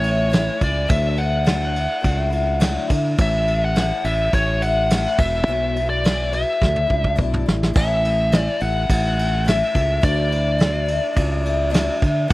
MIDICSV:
0, 0, Header, 1, 5, 480
1, 0, Start_track
1, 0, Tempo, 569801
1, 758, Time_signature, 4, 2, 24, 8
1, 10388, End_track
2, 0, Start_track
2, 0, Title_t, "Lead electric guitar"
2, 0, Program_c, 0, 29
2, 0, Note_on_c, 0, 73, 89
2, 534, Note_off_c, 0, 73, 0
2, 537, Note_on_c, 0, 74, 86
2, 754, Note_off_c, 0, 74, 0
2, 757, Note_on_c, 0, 76, 100
2, 995, Note_on_c, 0, 78, 84
2, 1006, Note_off_c, 0, 76, 0
2, 2406, Note_off_c, 0, 78, 0
2, 2707, Note_on_c, 0, 76, 116
2, 3066, Note_off_c, 0, 76, 0
2, 3069, Note_on_c, 0, 78, 107
2, 3412, Note_on_c, 0, 76, 81
2, 3427, Note_off_c, 0, 78, 0
2, 3655, Note_off_c, 0, 76, 0
2, 3659, Note_on_c, 0, 73, 99
2, 3893, Note_on_c, 0, 78, 108
2, 3899, Note_off_c, 0, 73, 0
2, 4378, Note_on_c, 0, 76, 89
2, 4383, Note_off_c, 0, 78, 0
2, 4938, Note_off_c, 0, 76, 0
2, 4967, Note_on_c, 0, 74, 90
2, 5337, Note_off_c, 0, 74, 0
2, 5344, Note_on_c, 0, 76, 80
2, 6020, Note_off_c, 0, 76, 0
2, 6550, Note_on_c, 0, 76, 101
2, 7072, Note_off_c, 0, 76, 0
2, 7072, Note_on_c, 0, 74, 101
2, 7258, Note_on_c, 0, 78, 88
2, 7277, Note_off_c, 0, 74, 0
2, 7989, Note_on_c, 0, 76, 106
2, 7991, Note_off_c, 0, 78, 0
2, 8459, Note_off_c, 0, 76, 0
2, 8463, Note_on_c, 0, 74, 81
2, 10096, Note_off_c, 0, 74, 0
2, 10388, End_track
3, 0, Start_track
3, 0, Title_t, "Twelve-string acoustic guitar"
3, 0, Program_c, 1, 25
3, 14, Note_on_c, 1, 64, 49
3, 30, Note_on_c, 1, 61, 42
3, 39, Note_on_c, 1, 57, 44
3, 252, Note_on_c, 1, 45, 87
3, 255, Note_on_c, 1, 52, 79
3, 256, Note_off_c, 1, 57, 0
3, 256, Note_off_c, 1, 61, 0
3, 263, Note_off_c, 1, 64, 0
3, 266, Note_on_c, 1, 57, 92
3, 266, Note_on_c, 1, 61, 85
3, 273, Note_on_c, 1, 64, 82
3, 486, Note_off_c, 1, 64, 0
3, 496, Note_on_c, 1, 64, 57
3, 505, Note_off_c, 1, 45, 0
3, 505, Note_off_c, 1, 61, 0
3, 507, Note_off_c, 1, 52, 0
3, 512, Note_off_c, 1, 57, 0
3, 515, Note_on_c, 1, 61, 60
3, 525, Note_on_c, 1, 57, 41
3, 732, Note_on_c, 1, 50, 76
3, 735, Note_off_c, 1, 64, 0
3, 737, Note_off_c, 1, 57, 0
3, 743, Note_on_c, 1, 54, 84
3, 745, Note_on_c, 1, 64, 82
3, 746, Note_off_c, 1, 61, 0
3, 747, Note_on_c, 1, 57, 88
3, 749, Note_on_c, 1, 62, 83
3, 967, Note_off_c, 1, 64, 0
3, 977, Note_off_c, 1, 62, 0
3, 977, Note_on_c, 1, 64, 50
3, 986, Note_off_c, 1, 50, 0
3, 987, Note_off_c, 1, 57, 0
3, 987, Note_on_c, 1, 62, 50
3, 991, Note_off_c, 1, 54, 0
3, 997, Note_on_c, 1, 57, 39
3, 1215, Note_off_c, 1, 57, 0
3, 1217, Note_on_c, 1, 50, 80
3, 1219, Note_on_c, 1, 54, 78
3, 1220, Note_off_c, 1, 64, 0
3, 1224, Note_off_c, 1, 62, 0
3, 1226, Note_on_c, 1, 57, 76
3, 1230, Note_on_c, 1, 64, 89
3, 1234, Note_on_c, 1, 62, 79
3, 1451, Note_off_c, 1, 64, 0
3, 1461, Note_off_c, 1, 62, 0
3, 1462, Note_on_c, 1, 64, 49
3, 1467, Note_off_c, 1, 57, 0
3, 1469, Note_off_c, 1, 50, 0
3, 1470, Note_off_c, 1, 54, 0
3, 1471, Note_on_c, 1, 62, 48
3, 1477, Note_on_c, 1, 57, 39
3, 1681, Note_off_c, 1, 57, 0
3, 1688, Note_on_c, 1, 54, 55
3, 1691, Note_on_c, 1, 57, 66
3, 1696, Note_off_c, 1, 62, 0
3, 1698, Note_off_c, 1, 64, 0
3, 1706, Note_on_c, 1, 62, 67
3, 1708, Note_on_c, 1, 64, 72
3, 1930, Note_off_c, 1, 64, 0
3, 1937, Note_off_c, 1, 62, 0
3, 1940, Note_on_c, 1, 64, 63
3, 1943, Note_off_c, 1, 57, 0
3, 1945, Note_off_c, 1, 54, 0
3, 1947, Note_on_c, 1, 62, 51
3, 1953, Note_on_c, 1, 57, 48
3, 2182, Note_off_c, 1, 57, 0
3, 2185, Note_off_c, 1, 62, 0
3, 2186, Note_off_c, 1, 64, 0
3, 2187, Note_on_c, 1, 50, 91
3, 2190, Note_on_c, 1, 54, 101
3, 2192, Note_on_c, 1, 57, 102
3, 2195, Note_on_c, 1, 62, 105
3, 2196, Note_on_c, 1, 64, 95
3, 2413, Note_off_c, 1, 64, 0
3, 2423, Note_on_c, 1, 64, 68
3, 2429, Note_off_c, 1, 62, 0
3, 2435, Note_off_c, 1, 50, 0
3, 2436, Note_off_c, 1, 54, 0
3, 2437, Note_off_c, 1, 57, 0
3, 2439, Note_on_c, 1, 62, 63
3, 2452, Note_on_c, 1, 57, 57
3, 2673, Note_off_c, 1, 64, 0
3, 2676, Note_on_c, 1, 45, 82
3, 2677, Note_off_c, 1, 57, 0
3, 2681, Note_off_c, 1, 62, 0
3, 2681, Note_on_c, 1, 52, 91
3, 2687, Note_on_c, 1, 57, 93
3, 2689, Note_on_c, 1, 64, 92
3, 2690, Note_on_c, 1, 61, 93
3, 2904, Note_off_c, 1, 64, 0
3, 2911, Note_off_c, 1, 61, 0
3, 2914, Note_on_c, 1, 64, 53
3, 2920, Note_off_c, 1, 45, 0
3, 2921, Note_on_c, 1, 61, 50
3, 2922, Note_off_c, 1, 52, 0
3, 2923, Note_off_c, 1, 57, 0
3, 2933, Note_on_c, 1, 57, 42
3, 3155, Note_off_c, 1, 57, 0
3, 3156, Note_on_c, 1, 45, 72
3, 3158, Note_off_c, 1, 61, 0
3, 3159, Note_off_c, 1, 64, 0
3, 3163, Note_on_c, 1, 52, 86
3, 3165, Note_on_c, 1, 57, 83
3, 3168, Note_on_c, 1, 61, 86
3, 3174, Note_on_c, 1, 64, 86
3, 3394, Note_off_c, 1, 64, 0
3, 3400, Note_off_c, 1, 45, 0
3, 3401, Note_off_c, 1, 61, 0
3, 3403, Note_off_c, 1, 52, 0
3, 3404, Note_on_c, 1, 64, 53
3, 3405, Note_off_c, 1, 57, 0
3, 3411, Note_on_c, 1, 61, 45
3, 3424, Note_on_c, 1, 57, 46
3, 3630, Note_off_c, 1, 57, 0
3, 3632, Note_on_c, 1, 52, 56
3, 3639, Note_off_c, 1, 64, 0
3, 3640, Note_on_c, 1, 57, 55
3, 3642, Note_off_c, 1, 61, 0
3, 3649, Note_on_c, 1, 64, 48
3, 3652, Note_on_c, 1, 61, 57
3, 3870, Note_off_c, 1, 64, 0
3, 3878, Note_off_c, 1, 52, 0
3, 3880, Note_off_c, 1, 61, 0
3, 3880, Note_on_c, 1, 64, 56
3, 3882, Note_off_c, 1, 57, 0
3, 3890, Note_on_c, 1, 61, 49
3, 3905, Note_on_c, 1, 57, 50
3, 4122, Note_off_c, 1, 57, 0
3, 4122, Note_off_c, 1, 64, 0
3, 4125, Note_on_c, 1, 45, 78
3, 4127, Note_off_c, 1, 61, 0
3, 4132, Note_on_c, 1, 52, 93
3, 4132, Note_on_c, 1, 57, 85
3, 4139, Note_on_c, 1, 61, 84
3, 4140, Note_on_c, 1, 64, 85
3, 4359, Note_off_c, 1, 64, 0
3, 4365, Note_off_c, 1, 45, 0
3, 4368, Note_off_c, 1, 52, 0
3, 4368, Note_off_c, 1, 57, 0
3, 4369, Note_on_c, 1, 64, 58
3, 4372, Note_off_c, 1, 61, 0
3, 4380, Note_on_c, 1, 59, 57
3, 4386, Note_on_c, 1, 56, 51
3, 4395, Note_on_c, 1, 54, 45
3, 4607, Note_off_c, 1, 64, 0
3, 4608, Note_on_c, 1, 40, 77
3, 4609, Note_off_c, 1, 54, 0
3, 4612, Note_off_c, 1, 56, 0
3, 4612, Note_off_c, 1, 59, 0
3, 4614, Note_on_c, 1, 47, 92
3, 4619, Note_on_c, 1, 54, 85
3, 4622, Note_on_c, 1, 56, 93
3, 4628, Note_on_c, 1, 59, 86
3, 4632, Note_on_c, 1, 64, 85
3, 4843, Note_off_c, 1, 64, 0
3, 4846, Note_off_c, 1, 40, 0
3, 4848, Note_off_c, 1, 59, 0
3, 4849, Note_off_c, 1, 47, 0
3, 4852, Note_off_c, 1, 54, 0
3, 4853, Note_off_c, 1, 56, 0
3, 4853, Note_on_c, 1, 64, 58
3, 4858, Note_on_c, 1, 59, 49
3, 4870, Note_on_c, 1, 56, 48
3, 4874, Note_on_c, 1, 54, 47
3, 5082, Note_off_c, 1, 54, 0
3, 5085, Note_off_c, 1, 56, 0
3, 5089, Note_off_c, 1, 64, 0
3, 5089, Note_on_c, 1, 40, 84
3, 5090, Note_on_c, 1, 47, 73
3, 5091, Note_off_c, 1, 59, 0
3, 5092, Note_on_c, 1, 54, 77
3, 5095, Note_on_c, 1, 56, 80
3, 5101, Note_on_c, 1, 59, 83
3, 5107, Note_on_c, 1, 64, 93
3, 5304, Note_off_c, 1, 64, 0
3, 5313, Note_off_c, 1, 59, 0
3, 5314, Note_on_c, 1, 64, 54
3, 5316, Note_off_c, 1, 56, 0
3, 5323, Note_on_c, 1, 59, 47
3, 5326, Note_on_c, 1, 56, 52
3, 5327, Note_off_c, 1, 40, 0
3, 5327, Note_off_c, 1, 47, 0
3, 5328, Note_off_c, 1, 54, 0
3, 5337, Note_on_c, 1, 54, 43
3, 5553, Note_off_c, 1, 54, 0
3, 5559, Note_off_c, 1, 64, 0
3, 5562, Note_off_c, 1, 56, 0
3, 5563, Note_on_c, 1, 54, 52
3, 5564, Note_off_c, 1, 59, 0
3, 5566, Note_on_c, 1, 57, 55
3, 5580, Note_on_c, 1, 62, 52
3, 5584, Note_on_c, 1, 64, 50
3, 5774, Note_off_c, 1, 64, 0
3, 5784, Note_off_c, 1, 62, 0
3, 5784, Note_on_c, 1, 64, 54
3, 5795, Note_on_c, 1, 62, 52
3, 5804, Note_off_c, 1, 54, 0
3, 5805, Note_off_c, 1, 57, 0
3, 5814, Note_on_c, 1, 57, 45
3, 6027, Note_off_c, 1, 62, 0
3, 6028, Note_on_c, 1, 50, 85
3, 6029, Note_off_c, 1, 57, 0
3, 6032, Note_on_c, 1, 54, 87
3, 6034, Note_off_c, 1, 64, 0
3, 6037, Note_on_c, 1, 62, 96
3, 6039, Note_on_c, 1, 57, 85
3, 6043, Note_on_c, 1, 64, 103
3, 6272, Note_off_c, 1, 64, 0
3, 6276, Note_off_c, 1, 50, 0
3, 6277, Note_off_c, 1, 62, 0
3, 6278, Note_off_c, 1, 54, 0
3, 6282, Note_off_c, 1, 57, 0
3, 6282, Note_on_c, 1, 64, 62
3, 6287, Note_on_c, 1, 62, 60
3, 6301, Note_on_c, 1, 57, 51
3, 6514, Note_on_c, 1, 45, 76
3, 6516, Note_off_c, 1, 57, 0
3, 6518, Note_on_c, 1, 52, 87
3, 6523, Note_off_c, 1, 64, 0
3, 6525, Note_off_c, 1, 62, 0
3, 6526, Note_on_c, 1, 57, 84
3, 6531, Note_on_c, 1, 64, 90
3, 6533, Note_on_c, 1, 61, 90
3, 6751, Note_off_c, 1, 64, 0
3, 6759, Note_off_c, 1, 45, 0
3, 6761, Note_off_c, 1, 52, 0
3, 6761, Note_on_c, 1, 64, 53
3, 6765, Note_off_c, 1, 57, 0
3, 6765, Note_off_c, 1, 61, 0
3, 6776, Note_on_c, 1, 61, 50
3, 6786, Note_on_c, 1, 57, 40
3, 7002, Note_off_c, 1, 64, 0
3, 7005, Note_off_c, 1, 61, 0
3, 7006, Note_off_c, 1, 57, 0
3, 7007, Note_on_c, 1, 45, 83
3, 7010, Note_on_c, 1, 52, 81
3, 7016, Note_on_c, 1, 57, 94
3, 7016, Note_on_c, 1, 61, 82
3, 7018, Note_on_c, 1, 64, 79
3, 7233, Note_off_c, 1, 64, 0
3, 7242, Note_off_c, 1, 61, 0
3, 7243, Note_on_c, 1, 64, 58
3, 7245, Note_off_c, 1, 45, 0
3, 7246, Note_off_c, 1, 52, 0
3, 7250, Note_off_c, 1, 57, 0
3, 7252, Note_on_c, 1, 61, 49
3, 7261, Note_on_c, 1, 57, 46
3, 7480, Note_off_c, 1, 57, 0
3, 7481, Note_on_c, 1, 52, 52
3, 7483, Note_off_c, 1, 64, 0
3, 7487, Note_off_c, 1, 61, 0
3, 7490, Note_on_c, 1, 57, 58
3, 7502, Note_on_c, 1, 61, 61
3, 7503, Note_on_c, 1, 64, 59
3, 7700, Note_off_c, 1, 64, 0
3, 7710, Note_on_c, 1, 64, 53
3, 7715, Note_off_c, 1, 61, 0
3, 7721, Note_off_c, 1, 57, 0
3, 7722, Note_off_c, 1, 52, 0
3, 7725, Note_on_c, 1, 61, 47
3, 7731, Note_on_c, 1, 57, 42
3, 7949, Note_off_c, 1, 57, 0
3, 7956, Note_off_c, 1, 64, 0
3, 7956, Note_on_c, 1, 45, 71
3, 7957, Note_on_c, 1, 52, 76
3, 7959, Note_on_c, 1, 57, 83
3, 7960, Note_off_c, 1, 61, 0
3, 7967, Note_on_c, 1, 64, 87
3, 7970, Note_on_c, 1, 61, 88
3, 8173, Note_off_c, 1, 64, 0
3, 8183, Note_on_c, 1, 64, 55
3, 8192, Note_off_c, 1, 61, 0
3, 8199, Note_off_c, 1, 45, 0
3, 8199, Note_off_c, 1, 52, 0
3, 8200, Note_off_c, 1, 57, 0
3, 8202, Note_on_c, 1, 61, 59
3, 8209, Note_on_c, 1, 57, 50
3, 8428, Note_off_c, 1, 57, 0
3, 8428, Note_on_c, 1, 50, 81
3, 8432, Note_off_c, 1, 64, 0
3, 8438, Note_on_c, 1, 54, 84
3, 8438, Note_on_c, 1, 57, 86
3, 8441, Note_on_c, 1, 64, 91
3, 8442, Note_off_c, 1, 61, 0
3, 8446, Note_on_c, 1, 62, 90
3, 8655, Note_off_c, 1, 64, 0
3, 8661, Note_off_c, 1, 62, 0
3, 8665, Note_on_c, 1, 64, 58
3, 8671, Note_on_c, 1, 62, 48
3, 8674, Note_off_c, 1, 50, 0
3, 8677, Note_off_c, 1, 57, 0
3, 8679, Note_off_c, 1, 54, 0
3, 8687, Note_on_c, 1, 57, 41
3, 8907, Note_off_c, 1, 57, 0
3, 8909, Note_off_c, 1, 62, 0
3, 8913, Note_off_c, 1, 64, 0
3, 8913, Note_on_c, 1, 50, 76
3, 8917, Note_on_c, 1, 57, 87
3, 8919, Note_on_c, 1, 62, 83
3, 8922, Note_on_c, 1, 54, 78
3, 8930, Note_on_c, 1, 64, 91
3, 9135, Note_off_c, 1, 64, 0
3, 9145, Note_off_c, 1, 62, 0
3, 9145, Note_on_c, 1, 64, 63
3, 9152, Note_off_c, 1, 57, 0
3, 9155, Note_on_c, 1, 62, 64
3, 9157, Note_off_c, 1, 50, 0
3, 9161, Note_off_c, 1, 54, 0
3, 9162, Note_on_c, 1, 57, 51
3, 9371, Note_off_c, 1, 62, 0
3, 9372, Note_off_c, 1, 57, 0
3, 9372, Note_on_c, 1, 54, 50
3, 9381, Note_on_c, 1, 62, 65
3, 9382, Note_on_c, 1, 57, 66
3, 9383, Note_off_c, 1, 64, 0
3, 9393, Note_on_c, 1, 64, 64
3, 9597, Note_off_c, 1, 64, 0
3, 9607, Note_on_c, 1, 64, 55
3, 9617, Note_off_c, 1, 62, 0
3, 9626, Note_off_c, 1, 54, 0
3, 9627, Note_off_c, 1, 57, 0
3, 9627, Note_on_c, 1, 62, 62
3, 9637, Note_on_c, 1, 57, 53
3, 9852, Note_off_c, 1, 57, 0
3, 9854, Note_on_c, 1, 50, 83
3, 9855, Note_off_c, 1, 62, 0
3, 9856, Note_off_c, 1, 64, 0
3, 9857, Note_on_c, 1, 54, 100
3, 9862, Note_on_c, 1, 57, 102
3, 9865, Note_on_c, 1, 62, 103
3, 9866, Note_on_c, 1, 64, 101
3, 10094, Note_off_c, 1, 64, 0
3, 10104, Note_on_c, 1, 64, 72
3, 10107, Note_off_c, 1, 50, 0
3, 10108, Note_off_c, 1, 54, 0
3, 10108, Note_off_c, 1, 62, 0
3, 10111, Note_off_c, 1, 57, 0
3, 10118, Note_on_c, 1, 62, 59
3, 10133, Note_on_c, 1, 57, 60
3, 10343, Note_on_c, 1, 45, 87
3, 10345, Note_on_c, 1, 52, 82
3, 10348, Note_off_c, 1, 57, 0
3, 10351, Note_off_c, 1, 64, 0
3, 10354, Note_off_c, 1, 62, 0
3, 10358, Note_on_c, 1, 57, 91
3, 10358, Note_on_c, 1, 61, 91
3, 10361, Note_on_c, 1, 64, 98
3, 10388, Note_off_c, 1, 45, 0
3, 10388, Note_off_c, 1, 52, 0
3, 10388, Note_off_c, 1, 57, 0
3, 10388, Note_off_c, 1, 61, 0
3, 10388, Note_off_c, 1, 64, 0
3, 10388, End_track
4, 0, Start_track
4, 0, Title_t, "Fingered electric bass"
4, 0, Program_c, 2, 33
4, 0, Note_on_c, 2, 33, 105
4, 406, Note_off_c, 2, 33, 0
4, 519, Note_on_c, 2, 37, 86
4, 721, Note_off_c, 2, 37, 0
4, 757, Note_on_c, 2, 38, 110
4, 1567, Note_off_c, 2, 38, 0
4, 1723, Note_on_c, 2, 37, 97
4, 2329, Note_off_c, 2, 37, 0
4, 2448, Note_on_c, 2, 50, 91
4, 2648, Note_off_c, 2, 50, 0
4, 2686, Note_on_c, 2, 33, 107
4, 3291, Note_off_c, 2, 33, 0
4, 3407, Note_on_c, 2, 33, 93
4, 3607, Note_off_c, 2, 33, 0
4, 3652, Note_on_c, 2, 33, 102
4, 4255, Note_off_c, 2, 33, 0
4, 4370, Note_on_c, 2, 28, 87
4, 4570, Note_off_c, 2, 28, 0
4, 5573, Note_on_c, 2, 38, 90
4, 5772, Note_off_c, 2, 38, 0
4, 5813, Note_on_c, 2, 37, 77
4, 6025, Note_off_c, 2, 37, 0
4, 6054, Note_on_c, 2, 35, 84
4, 6266, Note_off_c, 2, 35, 0
4, 6303, Note_on_c, 2, 33, 88
4, 6510, Note_off_c, 2, 33, 0
4, 6538, Note_on_c, 2, 33, 104
4, 7137, Note_off_c, 2, 33, 0
4, 7258, Note_on_c, 2, 33, 93
4, 7453, Note_off_c, 2, 33, 0
4, 7498, Note_on_c, 2, 33, 100
4, 8096, Note_off_c, 2, 33, 0
4, 8217, Note_on_c, 2, 37, 99
4, 8412, Note_off_c, 2, 37, 0
4, 8454, Note_on_c, 2, 38, 108
4, 9256, Note_off_c, 2, 38, 0
4, 9411, Note_on_c, 2, 37, 92
4, 10011, Note_off_c, 2, 37, 0
4, 10127, Note_on_c, 2, 50, 90
4, 10326, Note_off_c, 2, 50, 0
4, 10388, End_track
5, 0, Start_track
5, 0, Title_t, "Drums"
5, 29, Note_on_c, 9, 51, 69
5, 113, Note_off_c, 9, 51, 0
5, 277, Note_on_c, 9, 51, 100
5, 287, Note_on_c, 9, 38, 121
5, 361, Note_off_c, 9, 51, 0
5, 371, Note_off_c, 9, 38, 0
5, 513, Note_on_c, 9, 51, 80
5, 517, Note_on_c, 9, 36, 91
5, 597, Note_off_c, 9, 51, 0
5, 601, Note_off_c, 9, 36, 0
5, 752, Note_on_c, 9, 51, 106
5, 757, Note_on_c, 9, 36, 119
5, 836, Note_off_c, 9, 51, 0
5, 842, Note_off_c, 9, 36, 0
5, 988, Note_on_c, 9, 51, 68
5, 1072, Note_off_c, 9, 51, 0
5, 1230, Note_on_c, 9, 51, 102
5, 1240, Note_on_c, 9, 38, 114
5, 1315, Note_off_c, 9, 51, 0
5, 1325, Note_off_c, 9, 38, 0
5, 1482, Note_on_c, 9, 51, 66
5, 1567, Note_off_c, 9, 51, 0
5, 1721, Note_on_c, 9, 36, 83
5, 1722, Note_on_c, 9, 51, 87
5, 1806, Note_off_c, 9, 36, 0
5, 1807, Note_off_c, 9, 51, 0
5, 1956, Note_on_c, 9, 51, 72
5, 2041, Note_off_c, 9, 51, 0
5, 2195, Note_on_c, 9, 51, 103
5, 2205, Note_on_c, 9, 38, 112
5, 2279, Note_off_c, 9, 51, 0
5, 2290, Note_off_c, 9, 38, 0
5, 2442, Note_on_c, 9, 51, 86
5, 2443, Note_on_c, 9, 36, 86
5, 2526, Note_off_c, 9, 51, 0
5, 2527, Note_off_c, 9, 36, 0
5, 2684, Note_on_c, 9, 36, 121
5, 2684, Note_on_c, 9, 51, 110
5, 2768, Note_off_c, 9, 36, 0
5, 2768, Note_off_c, 9, 51, 0
5, 2926, Note_on_c, 9, 51, 76
5, 3011, Note_off_c, 9, 51, 0
5, 3164, Note_on_c, 9, 51, 107
5, 3174, Note_on_c, 9, 38, 108
5, 3249, Note_off_c, 9, 51, 0
5, 3259, Note_off_c, 9, 38, 0
5, 3407, Note_on_c, 9, 51, 74
5, 3491, Note_off_c, 9, 51, 0
5, 3648, Note_on_c, 9, 51, 87
5, 3649, Note_on_c, 9, 36, 85
5, 3732, Note_off_c, 9, 51, 0
5, 3734, Note_off_c, 9, 36, 0
5, 3891, Note_on_c, 9, 51, 78
5, 3975, Note_off_c, 9, 51, 0
5, 4130, Note_on_c, 9, 51, 110
5, 4140, Note_on_c, 9, 38, 113
5, 4214, Note_off_c, 9, 51, 0
5, 4225, Note_off_c, 9, 38, 0
5, 4368, Note_on_c, 9, 49, 108
5, 4369, Note_on_c, 9, 36, 113
5, 4452, Note_off_c, 9, 49, 0
5, 4453, Note_off_c, 9, 36, 0
5, 4854, Note_on_c, 9, 51, 61
5, 4938, Note_off_c, 9, 51, 0
5, 5096, Note_on_c, 9, 51, 98
5, 5106, Note_on_c, 9, 38, 110
5, 5180, Note_off_c, 9, 51, 0
5, 5190, Note_off_c, 9, 38, 0
5, 5330, Note_on_c, 9, 51, 67
5, 5414, Note_off_c, 9, 51, 0
5, 5574, Note_on_c, 9, 36, 77
5, 5583, Note_on_c, 9, 38, 67
5, 5658, Note_off_c, 9, 36, 0
5, 5667, Note_off_c, 9, 38, 0
5, 5692, Note_on_c, 9, 48, 63
5, 5777, Note_off_c, 9, 48, 0
5, 5813, Note_on_c, 9, 36, 69
5, 5897, Note_off_c, 9, 36, 0
5, 5933, Note_on_c, 9, 36, 70
5, 6017, Note_off_c, 9, 36, 0
5, 6053, Note_on_c, 9, 36, 87
5, 6137, Note_off_c, 9, 36, 0
5, 6179, Note_on_c, 9, 45, 80
5, 6263, Note_off_c, 9, 45, 0
5, 6304, Note_on_c, 9, 38, 112
5, 6388, Note_off_c, 9, 38, 0
5, 6427, Note_on_c, 9, 38, 92
5, 6511, Note_off_c, 9, 38, 0
5, 6535, Note_on_c, 9, 36, 124
5, 6538, Note_on_c, 9, 57, 127
5, 6619, Note_off_c, 9, 36, 0
5, 6622, Note_off_c, 9, 57, 0
5, 6780, Note_on_c, 9, 51, 72
5, 6864, Note_off_c, 9, 51, 0
5, 7010, Note_on_c, 9, 51, 104
5, 7020, Note_on_c, 9, 38, 127
5, 7094, Note_off_c, 9, 51, 0
5, 7104, Note_off_c, 9, 38, 0
5, 7247, Note_on_c, 9, 51, 82
5, 7331, Note_off_c, 9, 51, 0
5, 7494, Note_on_c, 9, 36, 83
5, 7495, Note_on_c, 9, 51, 106
5, 7578, Note_off_c, 9, 36, 0
5, 7579, Note_off_c, 9, 51, 0
5, 7741, Note_on_c, 9, 51, 77
5, 7825, Note_off_c, 9, 51, 0
5, 7981, Note_on_c, 9, 51, 103
5, 7992, Note_on_c, 9, 38, 110
5, 8066, Note_off_c, 9, 51, 0
5, 8076, Note_off_c, 9, 38, 0
5, 8213, Note_on_c, 9, 36, 84
5, 8219, Note_on_c, 9, 51, 78
5, 8298, Note_off_c, 9, 36, 0
5, 8303, Note_off_c, 9, 51, 0
5, 8452, Note_on_c, 9, 36, 125
5, 8452, Note_on_c, 9, 51, 99
5, 8536, Note_off_c, 9, 36, 0
5, 8537, Note_off_c, 9, 51, 0
5, 8693, Note_on_c, 9, 51, 73
5, 8778, Note_off_c, 9, 51, 0
5, 8928, Note_on_c, 9, 51, 98
5, 8938, Note_on_c, 9, 38, 121
5, 9013, Note_off_c, 9, 51, 0
5, 9023, Note_off_c, 9, 38, 0
5, 9166, Note_on_c, 9, 51, 80
5, 9250, Note_off_c, 9, 51, 0
5, 9406, Note_on_c, 9, 36, 84
5, 9406, Note_on_c, 9, 51, 95
5, 9490, Note_off_c, 9, 36, 0
5, 9490, Note_off_c, 9, 51, 0
5, 9648, Note_on_c, 9, 51, 71
5, 9732, Note_off_c, 9, 51, 0
5, 9889, Note_on_c, 9, 51, 106
5, 9899, Note_on_c, 9, 38, 121
5, 9973, Note_off_c, 9, 51, 0
5, 9984, Note_off_c, 9, 38, 0
5, 10128, Note_on_c, 9, 36, 92
5, 10137, Note_on_c, 9, 51, 78
5, 10212, Note_off_c, 9, 36, 0
5, 10221, Note_off_c, 9, 51, 0
5, 10388, End_track
0, 0, End_of_file